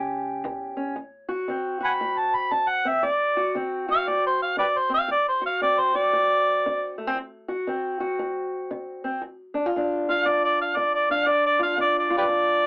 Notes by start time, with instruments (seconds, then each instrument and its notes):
Already playing: upright bass C#2, steel-string acoustic guitar E2 C#4 G4
0.44 upright bass E2, steel-string acoustic guitar E3
0.77 steel-string acoustic guitar C#4
0.96 steel-string acoustic guitar D2
1.29 steel-string acoustic guitar F#4
1.48 steel-string acoustic guitar D3 C4
1.81 steel-string acoustic guitar F#4
1.85 harmonica F#5 G#5 B5
2.01 steel-string acoustic guitar A2
2.18 harmonica A5
2.35 harmonica B5
2.51 steel-string acoustic guitar D3, harmonica A5
2.69 harmonica F#5
2.85 steel-string acoustic guitar C4, harmonica E5
3.03 steel-string acoustic guitar D2, harmonica D5
3.37 steel-string acoustic guitar F#4
3.55 steel-string acoustic guitar D3 C4
3.88 steel-string acoustic guitar F#4, harmonica F5
4.08 steel-string acoustic guitar A2, harmonica D5
4.27 harmonica C5
4.42 harmonica F5
4.57 steel-string acoustic guitar D3, harmonica G4 B4 D5
4.78 harmonica C5
4.89 steel-string acoustic guitar C4
4.94 harmonica F5
5.08 steel-string acoustic guitar D2, harmonica D5
5.29 harmonica C5
5.41 steel-string acoustic guitar F#4
5.46 harmonica F5
5.61 steel-string acoustic guitar D3 C4, harmonica D5
5.80 harmonica C5
5.95 steel-string acoustic guitar F#4, harmonica D5
6.13 steel-string acoustic guitar A2
6.66 steel-string acoustic guitar D3
6.98 steel-string acoustic guitar A3
7.07 steel-string acoustic guitar C4
7.15 steel-string acoustic guitar D2
7.48 steel-string acoustic guitar F#4
7.67 steel-string acoustic guitar D3 C4
8.00 steel-string acoustic guitar F#4
8.19 steel-string acoustic guitar A2
8.71 steel-string acoustic guitar D3
9.04 steel-string acoustic guitar C4
9.22 steel-string acoustic guitar G2
9.54 steel-string acoustic guitar D4
9.66 steel-string acoustic guitar F4
9.76 steel-string acoustic guitar D3 D4
10.09 steel-string acoustic guitar F4, harmonica F5
10.25 steel-string acoustic guitar D3, harmonica D5
10.45 harmonica D5
10.62 harmonica F5
10.77 steel-string acoustic guitar D3, harmonica D5
10.95 harmonica D5
11.10 steel-string acoustic guitar D4, harmonica F5
11.27 steel-string acoustic guitar G2, harmonica D5
11.46 harmonica D5
11.59 steel-string acoustic guitar F4, harmonica F5
11.77 steel-string acoustic guitar D3 D4, harmonica D5
11.99 harmonica D5
12.10 steel-string acoustic guitar F4
12.17 harmonica G4 B4 D5
12.28 steel-string acoustic guitar D3